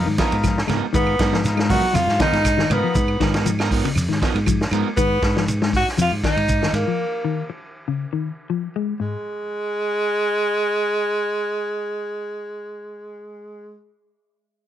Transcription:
0.06 G#2 D#3
0.18 F3 B3 D#4 F4 A#4, kick, snare, ride bell, high conga, shekere
0.32 G#2, ride bell
0.43 F3, kick, snare, ride bell, claves, shekere
0.58 snare
0.67 G#2 F3 G#3 B3 D#4 A#4, snare, ride bell, low conga, claves, shekere
0.93 G#2 D#3 B3 D#4 F4 A#4, kick, ride bell, shekere
1.07 claves
1.19 G#2 F3 B3 D#4 A#4, kick, snare, ride bell, high conga, shekere
1.32 F3 B3 D#4 F4 A#4, snare
1.44 B3 D#4 F4 A#4, snare, ride bell, shekere
1.57 G#3, snare, claves
1.70 F3 B3 D#4 F#4 A#4, kick, open hi-hat, high conga, low conga, shekere
1.83 high conga
1.93 F2 F3 F4, ride bell, high conga, low conga, claves, shekere
2.07 G#2, snare
2.19 D#3 F3 B3 D#4 F4 A#4, kick, snare, ride bell, high conga, low conga, shekere
2.33 G#2, snare, ride bell
2.45 kick, snare, ride bell, claves, shekere
2.57 D#3, snare
2.70 G#2 B3 D#4 F4 A#4, muted clean electric guitar stroke, ride bell, low conga, claves, shekere
2.84 F3
2.95 G#2, kick, ride bell, shekere
3.08 claves
3.20 G#2 D#3 F3 D#4 A#4, kick, snare, ride bell, shekere
3.34 B3 D#4 A#4, snare, ride bell
3.46 F3, ride bell, shekere
3.59 B3 D#4 A#4, snare, claves
3.71 F3 B3 D#4 A#4, kick, open hi-hat, shekere
3.85 C#3, ride bell
3.95 F2, ride bell, claves, shekere
4.09 G#2 D#3, snare
4.22 F3 B3 D#4 A#4, kick, snare, ride bell, shekere
4.35 G#2, ride bell
4.46 F3, kick, ride bell, claves, shekere
4.61 snare
4.71 G#2 F3 G#3 B3 D#4 A#4, ride bell, claves, shekere
4.97 G#2 D#3 B3, kick, ride bell, shekere
5.22 G#2, kick, snare, ride bell, shekere
5.37 F3, snare
5.48 ride bell, shekere
5.62 G#3, snare
5.73 F#4, kick, snare, open hi-hat, shekere
5.88 snare
5.98 F2 F3 F4, ride bell, shekere
6.11 G#2
6.24 D#3 D#4, kick, snare, ride bell, shekere
6.36 G#2, ride bell
6.49 kick, ride bell, shekere
6.62 D#3, snare
6.73 G#2 A#3, ride bell, shekere
6.88 F3
7.25 D#3
7.50 muted clean electric guitar stroke
7.88 C#3
8.13 D#3
8.50 F3
8.76 G#3
9.00 G#2 G#3

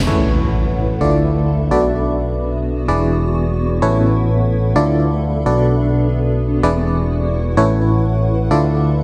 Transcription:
Already playing: E4 B4 F#5
0.07 A1 A2 C#4 E4 A4 B4 C#5, impact
0.50 E5 B5
1.01 D2 D3 D4 E4 F4 A4 D5
1.71 B1 B2 B3 D4 F#4 A4 B4 D5
1.86 F#4
2.24 C#6
2.88 E1 E3 D4 E4 G#4 B4 D5
3.31 B4 F#5
3.82 A1 A2 C#4 E4 A4 B4 C#5
4.25 E5 B5
4.76 D2 D3 D4 E4 F4 A4 D5
5.46 B1 B2 B3 D4 F#4 A4 B4 D5
5.99 F#4 C#6
6.63 E1 E3 D4 E4 G#4 B4 D5
6.90 B4
7.06 F#5
7.57 A1 A2 C#4 E4 A4 B4 C#5
7.82 E5
8.00 B5
8.51 D2 D3 D4 E4 F4 A4 D5

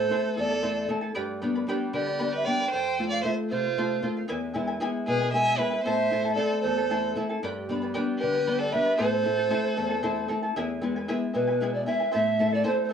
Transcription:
Already playing: A2 A4 C5
0.00 E4 A4 A5
0.10 A3 C4 E4 A4 C5 E5 A5
0.37 E2 E4 A4 D5 E5 A5
0.50 E4 A4 A5
0.62 A3 C4 E4 A4 C5 E5 A5
0.88 A3 C4 E4 A4 E5 A5
1.01 E4 A4 A5
1.15 G2 G4 B4 D5 G5 B5
1.42 G3 B3 D4 B4 D5 G5 B5
1.55 B4 D5 B5
1.67 G3 B3 D4 G4 B4 D5 G5 B5
1.93 D3 G4 B4 D5 G5 B5
2.06 B4 D5 B5
2.19 G3 B3 D4 G4 B4 D5 G5 B5
2.33 B4 E5
2.45 G3 B3 D4 B4 D5 G5 B5
2.60 B4 D5 B5
2.70 F2 A4 C5 F5 G5
2.99 A3 C4 F4 A4 C5 F5
3.09 C5 D5 F5
3.22 A3 C4 F4 A4 C5 E5 F5
3.50 C3 F4 A4 C5 F5
3.64 C5 F5
3.77 A3 C4 F4 A4 C5 F5
4.02 A3 C4 F4 A4 C5 F5
4.17 C5 F5
4.28 E2 E4 G#4 B4 E5 G#5
4.54 G#3 B3 E4 B4 E5 G#5
4.67 E4 B4 G#5
4.80 G#3 B3 E4 G#4 B4 E5 G#5
5.06 B2 E4 G#4 B4 E5 G#5
5.20 E4 B4 G#5
5.32 G#3 B3 E4 G#4 B4 E5 G#5
5.57 G#3 B3 E4 B4 E5
5.61 G#5
5.71 E4 B4 G#5
5.83 A2 E4 A4 C5 E5 A5
6.10 A3 C4 E4 A4 E5 A5
6.25 E4 A4 A5
6.34 A3 C4 E4 A4 C5 D5 E5
6.38 A5
6.61 E2 A4 C5 E5
6.66 E4 A4 A5
6.78 E4 A4 A5
6.90 A3 C4 E4 A4 C5 E5 A5
7.16 A3 C4 E4 A4 E5 A5
7.29 E4 A4 A5
7.43 G2 G4 B4 D5 G5 B5
7.69 G3 B3 D4 B4 D5 G5 B5
7.82 B4 D5 B5
7.94 G3 B3 D4 G4 B4 D5 G5 B5
8.19 G4 B4 D5 G5 B5
8.23 D3
8.33 B4 D5 B5
8.47 G3 B3 D4 G4 B4 D5 G5 B5
8.59 A4 D5
8.72 G3 B3 D4 B4 D5 E5 G5 B5
8.85 B4 D5 B5
8.97 A2 E4 A4 C5 E5 A5
9.23 A3 C4 E4 A4 E5 A5
9.37 E4 A4 A5
9.50 A3 C4 E4 A4 C5 E5 A5
9.76 E2 E4 A4 E5 A5
9.89 E4 A4 A5
10.03 A3 C4 E4 A4 C5 E5 A5
10.28 A3 C4 E4 A4 E5 A5
10.43 E4 A4 A5
10.56 E2 E4 G#4 B4 E5 G#5
10.81 G#3 B3 E4 B4 E5 G#5
10.96 E4 B4 G#5
11.08 G#3 B3 E4 G#4 B4 E5 G#5
11.34 B2 E4 B4 E5 G#5
11.47 E4 B4 G#5
11.60 G#3 B3 E4 G#4 B4 E5 G#5
11.73 D5
11.86 G#3 B3 E4 B4 E5 G#5
12.00 E4 B4 G#5
12.11 A2 E4 A4 C5 E5 A5
12.38 A3 C4 E4 A4 E5 A5
12.52 E4 A4 D5 A5
12.64 A3 C4 E4 A4 C5 E5 A5
12.84 C5
12.89 E4 A4 E5

